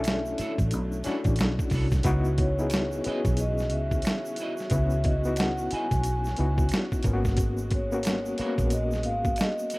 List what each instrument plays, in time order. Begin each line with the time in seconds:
Already playing: fingered electric bass B1, string section D3 F#3 A3, reed electric piano C#4 D4 E4 A4, vibraphone E5
0.04 finger snap, snare, closed hi-hat, shaker
0.26 shaker
0.38 clean electric guitar D4 E4 A4 C#5, muted fingered electric bass stroke, closed hi-hat, shaker
0.58 fingered electric bass A1, kick, closed hi-hat, shaker
0.71 fingered electric bass B1, closed hi-hat, shaker
0.92 shaker
1.04 reed electric piano C#4 D4 E4 F#4, clean electric guitar D4 E4 A4, muted fingered electric bass stroke, snare, closed hi-hat, shaker
1.08 clean electric guitar C#5
1.24 fingered electric bass A1, kick, closed hi-hat, shaker
1.36 finger snap, closed hi-hat, shaker
1.40 fingered electric bass B1, snare
1.59 kick, shaker
1.70 fingered electric bass C2, clean electric guitar D4, kick, open hi-hat, shaker
1.74 clean electric guitar E4 A4 C#5
1.91 kick, snare, closed hi-hat, shaker
2.03 fingered electric bass C#2, string section C#3 E3 C#4 F#4, reed electric piano B3 D#4 E4 F#4, kick, closed hi-hat, shaker
2.25 shaker
2.38 vibraphone C#5, kick, closed hi-hat
2.59 reed electric piano B3 D#4 E4 G#4, shaker
2.70 finger snap, snare, closed hi-hat, shaker
2.92 shaker
3.04 reed electric piano B3 C#4 E4 G#4, clean electric guitar E4 F#4 B4, muted fingered electric bass stroke, closed hi-hat
3.09 clean electric guitar D#5
3.25 fingered electric bass B1, kick, closed hi-hat, shaker
3.37 vibraphone D#5, closed hi-hat, shaker
3.58 snare, shaker
3.70 fingered electric bass C#2, vibraphone E5, closed hi-hat
3.91 kick, shaker
4.02 finger snap, closed hi-hat, shaker
4.07 snare
4.26 shaker
4.36 closed hi-hat, shaker
4.40 clean electric guitar E4 F#4 B4 D#5
4.57 snare, shaker
4.70 fingered electric bass C#2, reed electric piano B3 C#4 E4 F#4, vibraphone E5, kick, closed hi-hat, shaker
4.90 shaker
5.04 vibraphone D#5, kick, closed hi-hat
5.24 reed electric piano B3 D#4 E4 F#4, shaker
5.36 vibraphone F#5, finger snap, snare, closed hi-hat, shaker
5.58 shaker
5.71 clean electric guitar E4 F#4 B4, vibraphone G#5, muted fingered electric bass stroke, closed hi-hat
5.75 clean electric guitar D#5
5.91 fingered electric bass B1, kick, closed hi-hat, shaker
6.04 closed hi-hat, shaker
6.25 snare, shaker
6.36 fingered electric bass C#2, reed electric piano B3 D#4 E4 F#4, closed hi-hat
6.58 kick, shaker
6.69 finger snap, closed hi-hat, shaker
6.74 snare
6.92 kick, shaker
7.03 fingered electric bass G#1, string section G#3, reed electric piano A#3 B3 C#4, kick, closed hi-hat, shaker
7.07 reed electric piano F4
7.13 reed electric piano F#4
7.25 kick, snare, shaker
7.37 kick, closed hi-hat, shaker
7.58 shaker
7.71 vibraphone C#5, kick, closed hi-hat
7.92 reed electric piano A#3 B3 C#4 F#4, shaker
8.03 finger snap, snare, closed hi-hat, shaker
8.26 shaker
8.38 reed electric piano A#3 B3 C#4 F#4, clean electric guitar B3 F#4 A#4, muted fingered electric bass stroke, closed hi-hat
8.42 clean electric guitar C#5
8.58 fingered electric bass A#1, kick, closed hi-hat, shaker
8.70 vibraphone D#5, closed hi-hat, shaker
8.91 snare, shaker
9.03 fingered electric bass G#1, vibraphone F5, closed hi-hat
9.25 kick, shaker
9.36 vibraphone D#5, finger snap, closed hi-hat, shaker
9.41 snare
9.59 shaker
9.70 clean electric guitar B3, closed hi-hat, shaker
9.74 clean electric guitar F#4 A#4 C#5